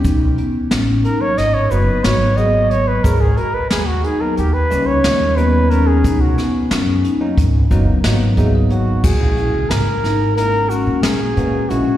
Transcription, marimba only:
\new Staff \with { instrumentName = "Marimba" } { \time 9/8 \key gis \minor \tempo 4. = 60 dis'8 b8 cis'8 dis'4 fis'8 fis'8 gis'4 | gis'8 fis'4 dis'4 cis'4 b8 cis'8 | dis'8 b8 cis'8 dis'4 fis'8 fis'8 gis'4 | fis'8 e'4 dis'4 cis'4 b'8 cis'8 | }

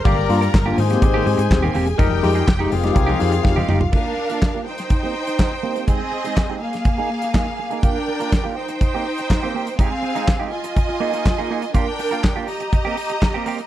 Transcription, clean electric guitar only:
\new Staff \with { instrumentName = "Clean electric guitar" } { \time 4/4 \key g \phrygian \tempo 4 = 123 <bes f' g'>16 r8 <bes f' bes'>16 r16 <bes f' g'>16 r8. <bes c' g'>16 r8. <bes c' g'>16 <bes c' g'>16 r16 | <aes ees' g'>16 r8 <aes ees' aes'>16 r16 <aes ees' g'>16 r8. <aes ees' g'>16 r8. <aes ees' g'>16 <aes ees' g'>16 r16 | <bes f' g'>8 r16 <bes f' bes'>16 r16 <bes f' g'>16 r8. <bes c' g'>16 r4 <bes c' g'>16 <bes c' g'>16 | <aes ees' g'>16 r8 <aes ees' aes'>16 r16 <aes ees' g'>16 r8. <bes ees' aes'>16 r8 <bes ees' aes'>16 r8 <bes ees' aes'>16 |
<bes f' g'>16 r8 <bes f' bes'>16 r16 <bes f' g'>16 r8. <bes c' g'>16 r8. <bes c' g'>16 <bes c' g'>16 r16 | <aes ees' g'>16 r8 <aes ees' aes'>16 r16 <aes ees' g'>16 r4 <bes ees' aes'>16 <bes ees' aes'>16 r16 <bes ees' aes'>16 <bes ees' aes'>16 r16 | <bes f' g'>16 r8 <bes f' bes'>16 r16 <bes f' g'>16 r8. <bes c' g'>16 r8. <bes c' g'>16 <bes c' g'>16 r16 | }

